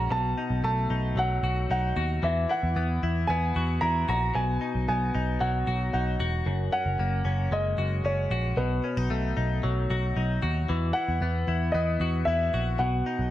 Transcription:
Already playing: clean electric guitar F#2 G#3 A#3 C#4 F#4, upright piano A#5
0.10 picked electric bass B1, clean electric guitar B2, upright piano A5
0.38 clean electric guitar D#4
0.50 picked electric bass B1
0.64 picked electric bass B1, clean electric guitar A3, upright piano A5
0.90 picked electric bass B1, clean electric guitar D#4
1.15 picked electric bass B1, clean electric guitar F#3, upright piano F#5
1.43 picked electric bass B1, clean electric guitar F#4
1.70 picked electric bass B1, clean electric guitar D#4, upright piano F#5
1.96 picked electric bass D#2, clean electric guitar F#4
2.23 picked electric bass E2, clean electric guitar E3, upright piano E5
2.49 clean electric guitar E4, upright piano F#5
2.63 picked electric bass E2
2.76 picked electric bass E2, clean electric guitar B3
3.03 picked electric bass E2, clean electric guitar E4
3.27 picked electric bass E2, clean electric guitar B3, upright piano G#5
3.56 picked electric bass E2, clean electric guitar F#4
3.81 picked electric bass E2, clean electric guitar E4, upright piano A#5
4.09 picked electric bass A#1, clean electric guitar F#4, upright piano A#5
4.35 picked electric bass B1, clean electric guitar B2, upright piano G#5
4.61 clean electric guitar D#4
4.75 picked electric bass B1
4.88 picked electric bass B1, clean electric guitar B3, upright piano G#5
5.15 picked electric bass B1, clean electric guitar D#4
5.40 picked electric bass B1, clean electric guitar F#3, upright piano F#5
5.67 picked electric bass B1, clean electric guitar F#4
5.93 picked electric bass B1, clean electric guitar D#4, upright piano F#5
6.20 picked electric bass E1, clean electric guitar F#4
6.46 picked electric bass F#1, clean electric guitar F#2
6.72 clean electric guitar C#4, upright piano F#5
6.85 picked electric bass F#1
6.99 picked electric bass F#1, clean electric guitar A#3
7.25 picked electric bass F#1, clean electric guitar C#4
7.51 picked electric bass F#1, clean electric guitar G#3, upright piano D#5
7.78 picked electric bass F#1, clean electric guitar F#4
8.04 picked electric bass F#1, clean electric guitar C#4, upright piano C#5
8.30 picked electric bass A#1, clean electric guitar F#4
8.57 picked electric bass B1, clean electric guitar B2, upright piano B4
8.84 clean electric guitar C#4
8.97 picked electric bass B1, clean electric guitar D#4
9.10 picked electric bass B1, clean electric guitar A3
9.37 picked electric bass B1, clean electric guitar D#4
9.63 picked electric bass B1, clean electric guitar F#3
9.90 picked electric bass B1, clean electric guitar F#4
10.16 picked electric bass B1, clean electric guitar D#4
10.42 picked electric bass D#2, clean electric guitar F#4
10.69 picked electric bass E2, clean electric guitar E3
10.93 clean electric guitar E4, upright piano F#5
11.08 picked electric bass E2
11.21 picked electric bass E2, clean electric guitar B3
11.48 picked electric bass E2, clean electric guitar E4
11.72 picked electric bass E2, clean electric guitar B3, upright piano D#5
12.00 picked electric bass E2, clean electric guitar F#4
12.25 picked electric bass E2, clean electric guitar E4, upright piano E5
12.54 picked electric bass A#1, clean electric guitar F#4
12.79 picked electric bass B1, clean electric guitar B2, upright piano F#5
13.06 clean electric guitar D#4
13.19 picked electric bass B1

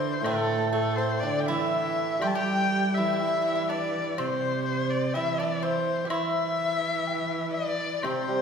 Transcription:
Already playing: cello D3, hammered dulcimer E3, pipa C4, xiao C5, erhu C5
0.21 hammered dulcimer A2, cello A2, xiao A4, erhu A4, high woodblock
0.26 pipa A3
0.72 pipa A3, erhu A4, xiao A4
0.96 pipa C4, erhu C5, xiao C5
1.20 cello D3, pipa D4, erhu D5, xiao D5, low woodblock
1.40 erhu G5
1.47 cello E3, pipa E4, erhu E5, xiao E5
2.19 hammered dulcimer G3, cello G3, pipa G4, erhu G5, xiao G5, high woodblock
2.27 erhu A5
2.34 cello G3, pipa G4, xiao G5, erhu G5
2.94 pipa E4, erhu E5, xiao E5
2.99 cello E3
3.05 pipa E4
3.13 pipa E4
3.20 pipa E4, low woodblock
3.27 pipa E4
3.37 pipa E4
3.42 pipa E4
3.48 pipa E4
3.56 pipa E4
3.62 xiao E5
3.69 pipa D4, erhu D5, xiao D5
4.14 xiao D5
4.18 cello C3, pipa C4, xiao C5, erhu C5, high woodblock
4.66 erhu C5
4.90 erhu D5
5.13 cello E3, pipa E4, xiao E5, erhu E5, low woodblock
5.38 pipa D4, erhu D5
5.61 pipa C4, xiao C5, erhu C5
6.05 pipa G4
6.10 cello E3, pipa E4, erhu E5, xiao E5, high woodblock
7.07 low woodblock
7.53 erhu D5, xiao D5
8.02 hammered dulcimer C3, cello C3, pipa C4, erhu C5, xiao C5, high woodblock
8.28 hammered dulcimer G3

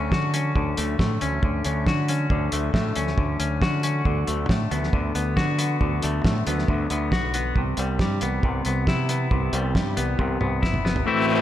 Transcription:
Already playing: fingered electric bass D2, overdriven electric guitar D3 A3 C#4 F#4, clean electric guitar D3 F#3 A3 C#4 A4
0.12 fingered electric bass D3, overdriven electric guitar F#4, kick, snare
0.34 overdriven electric guitar C#4, closed hi-hat
0.56 fingered electric bass D2, overdriven electric guitar D3, clean electric guitar D3 F#3 A3 C#4 A4, kick
0.77 fingered electric bass D2, overdriven electric guitar A3, closed hi-hat
0.99 fingered electric bass A2, overdriven electric guitar A3, kick, snare
1.21 fingered electric bass D2, clean electric guitar D3 F#3 A3 C#4 A4, overdriven electric guitar C#4, closed hi-hat
1.43 fingered electric bass D2, overdriven electric guitar D3, kick
1.64 fingered electric bass D2, overdriven electric guitar C#4, closed hi-hat
1.87 fingered electric bass D3, overdriven electric guitar F#4, kick, snare
2.08 overdriven electric guitar C#4, closed hi-hat
2.30 fingered electric bass D2, overdriven electric guitar D3, clean electric guitar D3 F#3 A3 C#4 A4, kick
2.52 fingered electric bass D2, overdriven electric guitar A3, closed hi-hat
2.74 fingered electric bass A2, overdriven electric guitar A3, kick, snare
2.95 fingered electric bass D2, clean electric guitar D3 F#3 A3 C#4 A4, overdriven electric guitar C#4, closed hi-hat
3.07 snare
3.18 fingered electric bass D2, overdriven electric guitar D3, kick
3.40 fingered electric bass D2, overdriven electric guitar C#4, closed hi-hat
3.62 fingered electric bass D3, overdriven electric guitar F#4, kick, snare
3.83 overdriven electric guitar C#4, closed hi-hat
4.05 fingered electric bass D2, clean electric guitar D3 F#3 B3 F#4 A4, overdriven electric guitar D3, kick
4.27 fingered electric bass D2, overdriven electric guitar A3, closed hi-hat
4.49 fingered electric bass A2, overdriven electric guitar A3, kick, snare
4.70 fingered electric bass D2, clean electric guitar D3 F#3 B3 F#4 A4, overdriven electric guitar B3, closed hi-hat
4.83 snare
4.93 fingered electric bass D2, overdriven electric guitar D3, kick
5.15 fingered electric bass D2, overdriven electric guitar B3, closed hi-hat
5.37 fingered electric bass D3, overdriven electric guitar F#4, kick, snare
5.58 overdriven electric guitar B3, closed hi-hat
5.81 fingered electric bass D2, clean electric guitar D3 F#3 B3 F#4 A4, overdriven electric guitar D3, kick
6.02 fingered electric bass D2, overdriven electric guitar A3, closed hi-hat
6.24 fingered electric bass A2, overdriven electric guitar A3, kick, snare
6.46 fingered electric bass D2, clean electric guitar D3 F#3 B3 F#4 A4, overdriven electric guitar B3, closed hi-hat
6.59 snare
6.68 fingered electric bass D2, overdriven electric guitar D3, kick
6.90 fingered electric bass D2, overdriven electric guitar B3, closed hi-hat
7.12 fingered electric bass B1, overdriven electric guitar F#4, kick, snare
7.34 overdriven electric guitar B3, closed hi-hat
7.55 fingered electric bass C2, clean electric guitar C3 G3 B3 E4 G4, overdriven electric guitar C3, kick
7.77 fingered electric bass C2, overdriven electric guitar G3, closed hi-hat
7.99 fingered electric bass G2, overdriven electric guitar G3, kick, snare
8.21 fingered electric bass C2, clean electric guitar C3 G3 B3 E4 G4, overdriven electric guitar B3, closed hi-hat
8.43 fingered electric bass C2, overdriven electric guitar C3, kick
8.65 fingered electric bass C2, overdriven electric guitar B3, closed hi-hat
8.87 fingered electric bass C3, overdriven electric guitar E4, kick, snare
9.09 overdriven electric guitar B3, closed hi-hat
9.31 fingered electric bass C2, clean electric guitar C3 G3 B3 E4 G4, overdriven electric guitar C3, kick
9.53 fingered electric bass C2, overdriven electric guitar G3, closed hi-hat
9.75 fingered electric bass G2, overdriven electric guitar G3, kick, snare
9.96 fingered electric bass C2, clean electric guitar C3 G3 B3 E4 G4, overdriven electric guitar B3, closed hi-hat
10.19 fingered electric bass C2, overdriven electric guitar C3, kick
10.41 fingered electric bass C2, overdriven electric guitar B3, mid tom
10.62 fingered electric bass G1, overdriven electric guitar E4, kick, snare
10.74 mid tom
10.85 overdriven electric guitar B3, snare
10.96 floor tom
11.05 overdriven electric guitar A2 E3 A3 C4 E4, clean electric guitar A2 E3 A3 C4 F#4

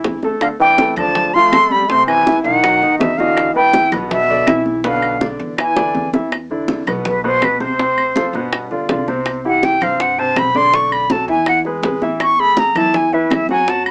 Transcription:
Already playing: grand piano E3 E4 E5
0.04 upright bass D2, high bongo, low bongo, high conga
0.23 grand piano A3 A4 A5, high bongo, high conga
0.41 trombone D3, flute F5, high bongo, high conga, claves
0.59 trombone E3, grand piano D4 D5 D6, flute G5, high conga
0.78 grand piano A3 A4 A5, high bongo, high conga
0.96 upright bass D2, grand piano D3 D4 D5, trombone F3, flute A5, high conga, low conga, claves
1.15 high bongo, high conga, low conga
1.33 grand piano F3 F4 F5, trombone A3, flute C6, high conga
1.51 upright bass F#2, grand piano A3 A4 A5, high bongo, low bongo, high conga, claves
1.71 trombone G3, flute B5, high conga
1.89 grand piano C3 C4 C5, trombone A3, flute C6, high bongo, high conga
2.07 trombone E3, flute G#5, high conga, claves
2.27 grand piano E3 E4 E5, high bongo, high conga
2.43 upright bass B1, trombone D#3, flute F#5, high bongo, high conga
2.63 grand piano F#3 F#4 F#5, high bongo, high conga, claves
2.82 upright bass D#2, grand piano D#3 D#4 D#5, high bongo, high conga
2.99 upright bass E2, trombone B2, flute E5, high bongo, low bongo, high conga
3.17 trombone D3, grand piano E3 F#4 D#5, flute F5, high bongo, high conga
3.37 high bongo, high conga, claves
3.54 trombone E3, grand piano B3 B4 B5, flute G5, high conga
3.73 grand piano E3 E4 E5, high bongo, high conga
3.92 upright bass B1, grand piano B2 B3 B4, high conga, low conga, claves
4.10 trombone B2, flute E5, high bongo, high conga, low conga
4.29 grand piano D3 D4 D5, high conga
4.47 upright bass B1, grand piano E3 E4 E5, high bongo, low bongo, high conga, claves
4.66 high conga
4.84 grand piano B2 B3 B4, trombone D3, flute F5, high bongo, high conga
5.02 high conga, claves
5.21 grand piano D3 D4 D5, high bongo, high conga
5.39 upright bass E2, high bongo, high conga
5.58 trombone E3, grand piano E3 E4 E5, flute G#5, high bongo, high conga, claves
5.76 grand piano D3 D4 D5, high bongo, high conga
5.94 upright bass E2, high conga
6.13 grand piano E3 E4 E5, low bongo, high conga
6.32 high bongo, high conga, claves
6.50 grand piano D3 D4 E4, high conga
6.68 high bongo, high conga
6.87 upright bass B1, grand piano B2 B3 B4, high conga, low conga, claves
7.05 flute B4, high bongo, high conga, low conga
7.24 grand piano B2 B3 B4, flute C5, high conga
7.42 upright bass D2, flute B4, high bongo, low bongo, high conga, claves
7.60 grand piano C3 C4 C5, flute C5, high conga
7.79 grand piano C3 C4 C5, high bongo, high conga
7.98 high conga, claves
8.16 grand piano F3 F4 A4, high bongo, high conga
8.33 upright bass G1, grand piano B2 B3 B4, high bongo, high conga
8.53 high bongo, high conga, claves
8.71 grand piano D3 D4 F4, high bongo, high conga
8.89 upright bass C2, grand piano D3 D4 F4, high bongo, low bongo, high conga
9.08 grand piano C3 C4 C5, high bongo, high conga
9.26 high bongo, high conga, claves
9.44 grand piano E3 E4 G4, flute F#5, high conga
9.63 flute G5, high bongo, high conga
9.81 upright bass G2, grand piano C3 C4 C5, flute F5, high conga, low conga, claves
10.00 flute F#5, high bongo, high conga
10.18 grand piano C3 C4 C5, flute A5, high conga
10.36 upright bass B1, flute B5, high bongo, low bongo, high conga, claves
10.55 grand piano D3 D4 D5, flute C6, high conga
10.73 grand piano D3 D4 D5, flute C#6, high bongo, high conga
10.91 flute B5, high conga, claves
11.10 grand piano F#3 F#4 A4, flute A5, high bongo, high conga
11.28 upright bass E2, grand piano E3 E4 E5, flute G#5, high bongo, high conga
11.46 flute F#5, high bongo, high conga, claves
11.65 grand piano G#3 G#4 B4, high bongo, high conga
11.83 upright bass A1, grand piano G#3 G#4 B4, high bongo, low bongo, high conga
12.02 grand piano E3 E4 E5, high bongo, high conga
12.20 flute C#6, high bongo, high conga, claves
12.38 grand piano A3 G#4 A4, flute B5, high conga
12.57 flute A#5, high bongo, high conga
12.75 upright bass E2, grand piano E3 E4 E5, flute A5, high conga, low conga, claves
12.94 flute G#5, high bongo, high conga, low conga
13.13 grand piano E3 E4 E5, flute B4, high conga
13.30 upright bass F#2, flute E5, high bongo, low bongo, high conga, claves
13.49 grand piano F#3 F#4 F#5, flute G#5, high conga
13.67 grand piano F#3 F#4 F#5, flute A5, high bongo, high conga
13.86 flute B5, high conga, claves

